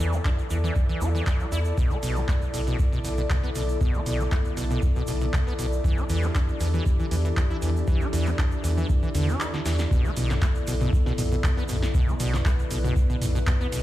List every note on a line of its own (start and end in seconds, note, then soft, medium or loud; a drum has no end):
0.00 0.20 E2 medium
0.00 0.15 E3 loud
0.00 13.83 E4 loud
0.00 13.83 A4 medium
0.00 13.83 D5 medium
0.00 shaker medium
0.13 0.17 E4 medium
0.13 shaker soft
0.25 0.29 D4 loud
0.25 kick loud
0.25 clap loud
0.25 shaker soft
0.39 shaker soft
0.50 0.71 E2 loud
0.50 0.58 E3 medium
0.50 shaker medium
0.64 0.74 E3 loud
0.64 shaker soft
0.76 kick loud
0.76 shaker soft
0.89 1.03 E3 loud
0.89 shaker soft
1.01 1.22 E2 medium
1.01 1.09 G4 medium
1.01 shaker medium
1.15 1.25 E3 loud
1.15 shaker soft
1.27 1.42 E3 medium
1.27 kick loud
1.27 clap loud
1.27 shaker medium
1.40 1.47 G3 medium
1.40 shaker soft
1.52 1.73 E2 medium
1.52 1.59 E4 loud
1.52 shaker loud
1.65 shaker soft
1.77 1.93 B2 loud
1.77 5.80 D3 medium
1.77 5.80 B3 medium
1.77 5.80 A4 medium
1.77 kick loud
1.77 shaker medium
1.90 1.98 B3 medium
1.90 shaker soft
2.03 2.24 B1 loud
2.03 2.18 B2 loud
2.03 open hi-hat loud
2.03 shaker medium
2.16 2.20 B3 medium
2.16 shaker soft
2.28 2.33 A3 loud
2.28 kick loud
2.28 clap loud
2.28 shaker soft
2.42 shaker soft
2.54 2.75 B1 medium
2.54 2.61 B2 medium
2.54 open hi-hat medium
2.54 shaker medium
2.67 2.77 B2 loud
2.67 shaker soft
2.79 kick loud
2.79 shaker medium
2.92 2.99 B2 loud
2.92 shaker soft
3.04 3.26 B1 medium
3.04 3.09 B2 medium
3.04 open hi-hat loud
3.04 shaker medium
3.17 3.22 B2 medium
3.17 shaker soft
3.30 3.35 B2 loud
3.30 kick loud
3.30 clap loud
3.30 shaker soft
3.43 3.50 B3 medium
3.43 shaker soft
3.55 3.76 B1 medium
3.55 3.63 B2 medium
3.55 open hi-hat medium
3.55 shaker medium
3.69 shaker soft
3.81 3.96 B2 loud
3.81 kick loud
3.81 shaker soft
3.94 4.01 B3 medium
3.94 shaker soft
4.06 4.27 B1 loud
4.06 4.21 B2 loud
4.06 open hi-hat medium
4.06 shaker medium
4.20 4.24 B3 medium
4.20 shaker soft
4.32 4.36 A3 loud
4.32 kick loud
4.32 clap loud
4.32 shaker soft
4.45 shaker soft
4.57 4.78 B1 medium
4.57 4.65 B2 medium
4.57 open hi-hat medium
4.57 shaker medium
4.71 4.81 B2 loud
4.71 shaker soft
4.82 kick loud
4.82 shaker soft
4.96 5.03 B2 loud
4.96 shaker soft
5.07 5.29 B1 medium
5.07 5.12 B2 medium
5.07 open hi-hat loud
5.07 shaker medium
5.21 5.25 B2 medium
5.21 shaker soft
5.33 5.38 B2 loud
5.33 kick loud
5.33 clap loud
5.33 shaker soft
5.47 5.53 B3 medium
5.47 shaker soft
5.59 5.80 B1 medium
5.59 5.66 B2 medium
5.59 open hi-hat medium
5.59 shaker medium
5.72 shaker soft
5.84 5.99 E3 loud
5.84 9.87 E3 medium
5.84 9.87 D4 medium
5.84 9.87 G4 medium
5.84 kick loud
5.84 shaker medium
5.98 6.04 E4 medium
5.98 shaker soft
6.09 6.31 E2 medium
6.09 6.25 E3 loud
6.09 open hi-hat medium
6.09 shaker medium
6.23 6.27 E4 medium
6.23 shaker soft
6.35 6.40 D4 loud
6.35 kick loud
6.35 clap loud
6.35 shaker medium
6.48 shaker soft
6.60 6.81 E2 medium
6.60 6.68 E3 medium
6.60 open hi-hat medium
6.60 shaker medium
6.74 6.84 E3 loud
6.74 shaker soft
6.86 kick loud
6.86 shaker medium
7.00 7.06 E3 loud
7.00 shaker soft
7.11 7.32 E2 medium
7.11 7.16 E3 medium
7.11 open hi-hat loud
7.11 shaker medium
7.25 7.29 E3 medium
7.25 shaker soft
7.37 7.41 E3 loud
7.37 kick loud
7.37 clap loud
7.37 shaker soft
7.50 7.57 E4 medium
7.50 shaker soft
7.62 7.83 E2 medium
7.62 7.70 E3 medium
7.62 open hi-hat medium
7.62 shaker medium
7.76 shaker soft
7.87 8.03 E3 loud
7.87 kick loud
7.87 shaker medium
8.01 8.08 E4 medium
8.01 shaker soft
8.13 8.34 E2 loud
8.13 8.28 E3 loud
8.13 open hi-hat medium
8.13 shaker medium
8.26 8.31 E4 medium
8.26 clap soft
8.26 shaker soft
8.38 8.43 D4 loud
8.38 kick loud
8.38 clap loud
8.38 shaker medium
8.51 shaker soft
8.64 8.85 E2 loud
8.64 8.71 E3 medium
8.64 open hi-hat medium
8.64 shaker loud
8.77 8.87 E3 loud
8.77 shaker soft
8.89 kick loud
8.89 shaker soft
9.03 9.09 E3 loud
9.03 shaker soft
9.15 9.36 E2 medium
9.15 9.30 D3 loud
9.15 open hi-hat loud
9.15 shaker medium
9.28 9.42 D4 medium
9.28 shaker soft
9.40 9.48 E4 loud
9.40 clap loud
9.40 shaker medium
9.54 9.60 D3 medium
9.54 snare medium
9.54 shaker soft
9.66 9.87 E2 medium
9.66 9.77 E3 medium
9.66 snare medium
9.66 open hi-hat medium
9.66 shaker medium
9.79 snare medium
9.79 shaker soft
9.91 10.06 B2 loud
9.91 13.83 D3 medium
9.91 13.83 B3 medium
9.91 11.93 A4 loud
9.91 kick loud
9.91 shaker medium
10.05 10.11 B3 medium
10.05 shaker soft
10.17 10.38 B1 medium
10.17 10.32 B2 loud
10.17 open hi-hat loud
10.17 shaker medium
10.30 10.34 B3 medium
10.30 snare medium
10.30 mid tom loud
10.30 shaker soft
10.42 10.46 A3 loud
10.42 kick loud
10.42 clap loud
10.42 shaker medium
10.55 shaker soft
10.67 10.88 B1 loud
10.67 10.75 B2 medium
10.67 open hi-hat medium
10.67 shaker loud
10.81 10.91 B2 loud
10.81 mid tom medium
10.81 shaker soft
10.93 kick loud
10.93 shaker soft
11.06 11.13 B2 loud
11.06 snare soft
11.06 shaker soft
11.18 11.39 B1 medium
11.18 11.23 B2 medium
11.18 mid tom medium
11.18 open hi-hat loud
11.18 shaker medium
11.32 11.36 B2 medium
11.32 shaker soft
11.44 11.48 B2 loud
11.44 kick loud
11.44 clap loud
11.44 shaker medium
11.57 11.64 B3 medium
11.57 shaker soft
11.68 11.90 B1 medium
11.68 11.76 B2 medium
11.68 mid tom medium
11.68 open hi-hat medium
11.68 shaker medium
11.83 snare medium
11.83 shaker soft
11.94 12.10 B2 loud
11.94 13.83 B4 medium
11.94 kick loud
11.94 shaker medium
12.08 12.15 B3 medium
12.08 shaker soft
12.20 12.41 B1 loud
12.20 12.35 B2 loud
12.20 open hi-hat loud
12.20 shaker loud
12.33 12.37 B3 medium
12.33 snare medium
12.33 mid tom medium
12.33 shaker soft
12.45 12.50 A3 loud
12.45 kick loud
12.45 clap loud
12.45 shaker medium
12.59 shaker soft
12.71 12.92 B1 loud
12.71 12.78 B2 medium
12.71 open hi-hat loud
12.71 shaker loud
12.84 12.94 B2 loud
12.84 mid tom medium
12.84 shaker soft
12.96 kick loud
12.96 shaker medium
13.10 13.16 B2 loud
13.10 shaker soft
13.22 13.43 B1 loud
13.22 13.26 B2 medium
13.22 mid tom medium
13.22 open hi-hat loud
13.22 shaker loud
13.35 13.39 B2 medium
13.35 shaker soft
13.47 13.52 B2 loud
13.47 kick loud
13.47 clap loud
13.47 shaker medium
13.61 13.67 B3 medium
13.61 shaker soft
13.72 13.83 B1 medium
13.72 13.80 B2 medium
13.72 open hi-hat medium
13.72 shaker medium